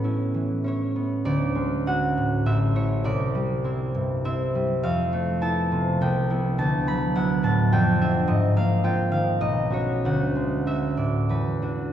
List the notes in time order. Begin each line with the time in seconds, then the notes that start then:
Already playing: A2 B3 A4 B4
0.04 C#4 E4
0.34 E3
0.64 C#4 E4 C#5
0.96 B3
1.25 D2 D5
1.55 G#3
1.86 C#4 F#4 F#5
2.17 A2
2.46 A1 E5
2.75 C#4 E4 C#5
3.04 C2 D5
3.35 G3
3.64 C4 E4
3.94 G2
4.25 C4 E4 E5
4.55 G3
4.83 F2 F5
5.13 A3
5.41 B3 E4 A5
5.72 C3
6.01 C2 G5
6.30 B3 E4
6.58 D2 A5
6.87 F#3 B5
7.15 B3 E4 F#5
7.43 A2 A5
7.72 F2 G5
8.01 D4 F4 E5
8.27 G#2 D#5
8.56 A#3 F5
8.83 C4 F4 G5
9.11 D#3 F5
9.41 B1 D#5
9.70 C#4 F#4 C#5
10.05 D2 F#5
10.35 G#3
10.66 C#4 F#4 E5
10.97 A2 D5
11.29 E2 B4
11.62 D4 F#4